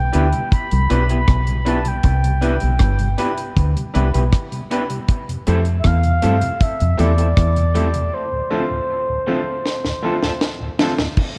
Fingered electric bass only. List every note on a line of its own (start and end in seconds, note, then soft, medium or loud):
0.00 0.10 B1 loud
0.15 0.32 D2 medium
0.72 0.89 C2 medium
0.91 1.25 B1 loud
1.29 2.01 B1 loud
2.05 2.58 C2 loud
2.63 2.79 B1 medium
2.81 3.15 G1 loud
3.57 3.74 D2 loud
3.96 4.13 C2 loud
4.15 4.31 B1 medium
5.48 5.82 F2 loud
5.85 6.19 E2 loud
6.24 6.41 G2 medium
6.81 6.98 F2 medium
6.99 7.34 E2 loud
7.38 8.09 E2 loud